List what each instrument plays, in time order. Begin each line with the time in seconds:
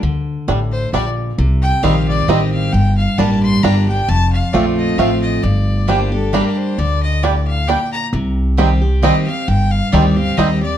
0.03 upright bass D2, steel-string acoustic guitar D3
0.48 upright bass A1, steel-string acoustic guitar A2, five-string banjo G3 D4
0.72 fiddle C5
0.93 upright bass A#1, steel-string acoustic guitar A#2, five-string banjo G3 D4, fiddle D5
1.38 upright bass C2, steel-string acoustic guitar C3
1.62 fiddle G5
1.83 upright bass A#1, steel-string acoustic guitar D#3 G3 C4 G4, five-string banjo G3 C4 D#4, fiddle F5
2.08 fiddle D5
2.28 upright bass A1, steel-string acoustic guitar D#3 G3 C4 G4, five-string banjo G3 C4 D#4, fiddle D#5
2.52 fiddle F5
2.73 upright bass G1, steel-string acoustic guitar G2, fiddle G5
2.97 fiddle F5
3.18 upright bass A1, steel-string acoustic guitar G3 A#3 D4 G4, five-string banjo G3 D4, fiddle A5
3.42 fiddle C6
3.63 upright bass G1, steel-string acoustic guitar G3 A#3 D4 G4, five-string banjo G3 D4, fiddle A#5
3.87 steel-string acoustic guitar D4 G4, fiddle G5
4.08 upright bass F1, steel-string acoustic guitar F2, fiddle A5
4.32 fiddle F5
4.53 upright bass A#1, steel-string acoustic guitar F3 A3 C4 F4, five-string banjo A3 C4 F4, fiddle D5
4.77 fiddle D#5
4.98 upright bass A1, steel-string acoustic guitar F3 A3 C4 F4, five-string banjo A3 C4 F4, fiddle F5
5.22 fiddle D#5
5.43 upright bass G1, steel-string acoustic guitar G2, fiddle D5
5.87 steel-string acoustic guitar G3 A#3 D4 G4, five-string banjo G3 D4, mandolin A#3 G4 D5 G5, fiddle C5
6.12 steel-string acoustic guitar D4 G4, fiddle A4
6.33 steel-string acoustic guitar G3 A#3 D4 G4, five-string banjo G3 D4, mandolin A#3 G4 D5 G5, fiddle A#4
6.57 fiddle C5
6.78 upright bass D2, steel-string acoustic guitar D3, fiddle D5
7.03 fiddle D#5
7.23 steel-string acoustic guitar A2, five-string banjo G3 D4, mandolin A#3 G4 D5 G5, fiddle D5
7.47 fiddle F5
7.67 steel-string acoustic guitar A#2, five-string banjo G3 D4, mandolin A#3 G4 D5 G5, fiddle G5
7.92 fiddle A#5
8.13 upright bass C2, steel-string acoustic guitar C3
8.57 steel-string acoustic guitar D#3 G3 C4 G4, five-string banjo G3 C4 D#4, mandolin C4 G4 D#5 G5
8.81 steel-string acoustic guitar C4 G4
9.02 steel-string acoustic guitar D#3 G3 C4 G4, five-string banjo G3 C4 D#4, mandolin C4 G4 D#5 G5, fiddle D#5
9.27 steel-string acoustic guitar C4 G4, fiddle F5
9.48 upright bass G1, steel-string acoustic guitar G2, fiddle G5
9.72 fiddle F5
9.92 upright bass D2, steel-string acoustic guitar D#3 G3 C4 G4, five-string banjo G3 C4 D#4, mandolin C4 G4 D#5 G5, fiddle D5
10.16 steel-string acoustic guitar C4 G4, fiddle F5
10.37 upright bass D#2, steel-string acoustic guitar D#3 G3 C4 G4, five-string banjo G3 C4 D#4, mandolin C4 G4 D#5 G5, fiddle D#5
10.61 steel-string acoustic guitar C4 G4, fiddle D5